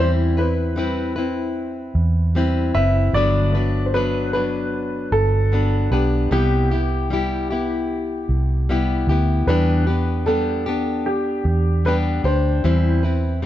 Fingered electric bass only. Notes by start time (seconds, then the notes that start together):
Already playing: E2
1.95 E2
2.74 F#1
3.13 G1
5.12 G1
5.91 B1
6.31 C2
8.29 C2
9.07 D2
9.47 E2
11.45 E2
12.24 D2
12.64 E2